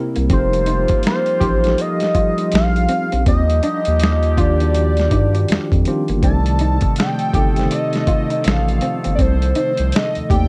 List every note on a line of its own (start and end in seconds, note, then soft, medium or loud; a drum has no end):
0.00 0.26 C3 medium
0.00 0.29 C3 medium
0.00 6.19 G3 medium
0.00 0.28 A#3 medium
0.00 0.27 C4 medium
0.00 0.27 E4 medium
0.00 0.30 E4 medium
0.00 0.28 A#4 medium
0.16 0.30 C2 medium
0.16 0.26 A#3 medium
0.16 closed hi-hat medium
0.29 0.86 F1 loud
0.29 2.86 C3 medium
0.29 1.30 F3 medium
0.29 10.48 F3 medium
0.29 3.23 A#3 medium
0.29 2.86 A#3 medium
0.29 0.46 C4 medium
0.29 1.31 D#4 medium
0.29 6.19 F4 medium
0.29 2.86 F4 medium
0.29 1.31 G4 medium
0.29 0.39 A4 medium
0.29 1.02 C5 medium
0.29 kick loud
0.29 closed hi-hat medium
0.39 1.35 A#4 loud
0.53 closed hi-hat medium
0.66 0.82 D#4 medium
0.66 closed hi-hat medium
0.88 0.96 A1 soft
0.88 kick loud
0.88 closed hi-hat medium
1.03 snare loud
1.03 closed hi-hat medium
1.07 1.82 C5 loud
1.26 closed hi-hat soft
1.40 1.75 A1 medium
1.40 1.60 F3 medium
1.40 1.61 D#4 medium
1.40 1.56 G4 medium
1.40 1.61 G4 medium
1.40 1.62 C5 medium
1.40 kick medium
1.40 closed hi-hat medium
1.63 2.89 F3 medium
1.63 2.89 D#4 medium
1.63 2.90 G4 medium
1.63 2.90 A4 medium
1.63 closed hi-hat soft
1.67 snare soft
1.78 2.54 D#5 loud
1.78 muted clean electric guitar stroke soft
1.78 closed hi-hat medium
2.00 snare soft
2.00 closed hi-hat medium
2.15 2.30 F4 medium
2.15 kick medium
2.15 closed hi-hat medium
2.38 2.48 D#4 medium
2.38 closed hi-hat soft
2.52 2.87 A#1 loud
2.52 3.24 F5 loud
2.52 muted clean electric guitar stroke soft
2.52 snare loud
2.52 closed hi-hat medium
2.76 closed hi-hat soft
2.89 3.04 C4 medium
2.89 closed hi-hat medium
3.12 3.26 A#1 medium
3.12 3.22 C4 medium
3.12 closed hi-hat soft
3.26 3.61 D#2 loud
3.26 5.82 D3 medium
3.26 5.82 A#3 medium
3.26 3.42 C4 medium
3.26 5.82 G4 medium
3.26 4.41 D#5 loud
3.26 kick loud
3.26 closed hi-hat medium
3.50 closed hi-hat medium
3.63 3.78 D4 medium
3.63 closed hi-hat medium
3.85 5.09 D#2 medium
3.85 closed hi-hat medium
4.00 snare loud
4.00 closed hi-hat medium
4.23 closed hi-hat soft
4.37 4.57 D#3 medium
4.37 4.58 D4 medium
4.37 4.53 F4 medium
4.37 4.58 F4 medium
4.37 4.59 G4 medium
4.37 5.87 D5 medium
4.37 kick loud
4.37 closed hi-hat medium
4.60 5.73 D#3 medium
4.60 5.74 D4 medium
4.60 5.74 F4 medium
4.60 4.67 F#4 medium
4.60 closed hi-hat soft
4.70 5.78 G4 medium
4.75 muted clean electric guitar stroke soft
4.75 closed hi-hat medium
4.97 snare soft
4.97 closed hi-hat soft
5.11 5.46 G2 medium
5.11 5.27 D#4 medium
5.11 kick medium
5.11 closed hi-hat medium
5.35 5.44 D4 medium
5.35 closed hi-hat soft
5.48 5.59 F2 medium
5.48 muted clean electric guitar stroke soft
5.48 snare loud
5.48 closed hi-hat medium
5.72 5.85 F2 medium
5.72 kick loud
5.72 closed hi-hat soft
5.85 6.19 D#3 medium
5.85 6.02 C4 medium
5.85 6.20 D4 medium
5.85 6.20 F4 medium
5.85 6.21 G4 medium
5.85 closed hi-hat medium
6.08 6.22 G1 medium
6.08 6.19 A#3 medium
6.08 closed hi-hat soft
6.21 6.79 C2 medium
6.21 10.48 C3 medium
6.21 7.23 C3 medium
6.21 10.48 D3 medium
6.21 10.48 D#3 medium
6.21 10.48 A3 medium
6.21 7.23 A3 medium
6.21 6.38 C4 medium
6.21 6.31 D4 medium
6.21 10.48 A4 medium
6.21 7.24 D5 loud
6.21 6.94 A5 medium
6.21 kick loud
6.21 closed hi-hat medium
6.30 7.27 D#3 medium
6.46 closed hi-hat medium
6.59 6.76 D#4 medium
6.59 closed hi-hat medium
6.81 6.88 G1 soft
6.81 kick medium
6.81 closed hi-hat medium
6.96 7.68 G5 loud
6.96 snare loud
6.96 closed hi-hat medium
7.19 closed hi-hat soft
7.33 7.68 G1 medium
7.33 7.53 C3 medium
7.33 7.54 A3 medium
7.33 7.55 D#4 medium
7.33 7.49 G4 medium
7.33 7.55 A4 medium
7.33 kick medium
7.33 closed hi-hat medium
7.56 8.82 C3 medium
7.56 8.83 D#3 medium
7.56 8.82 A3 medium
7.56 8.83 C5 medium
7.56 snare soft
7.56 closed hi-hat soft
7.71 8.47 D#5 loud
7.71 muted clean electric guitar stroke soft
7.71 closed hi-hat loud
7.93 snare soft
7.93 closed hi-hat medium
8.07 8.23 F4 medium
8.07 kick medium
8.07 closed hi-hat medium
8.30 8.40 D#4 medium
8.30 closed hi-hat soft
8.44 8.80 A1 loud
8.44 9.14 F5 loud
8.44 muted clean electric guitar stroke soft
8.44 snare loud
8.44 closed hi-hat medium
8.68 closed hi-hat soft
8.81 8.97 C4 medium
8.81 closed hi-hat medium
9.04 9.21 G1 medium
9.04 9.14 C4 medium
9.04 closed hi-hat medium
9.15 9.53 C2 loud
9.15 9.34 C4 medium
9.15 9.22 D5 medium
9.15 kick loud
9.15 closed hi-hat medium
9.21 9.57 C5 medium
9.42 closed hi-hat medium
9.55 9.71 D#4 medium
9.55 9.97 C5 medium
9.55 closed hi-hat medium
9.77 9.92 C2 medium
9.77 closed hi-hat medium
9.92 10.31 D#5 loud
9.92 snare loud
9.92 closed hi-hat medium
10.15 10.22 D#2 soft
10.15 closed hi-hat soft
10.29 10.48 D#2 medium
10.29 10.48 C3 medium
10.29 10.48 A3 medium
10.29 10.48 D#4 medium
10.29 10.45 G4 medium
10.29 10.48 D5 medium
10.29 10.48 G5 medium
10.29 kick medium
10.29 closed hi-hat medium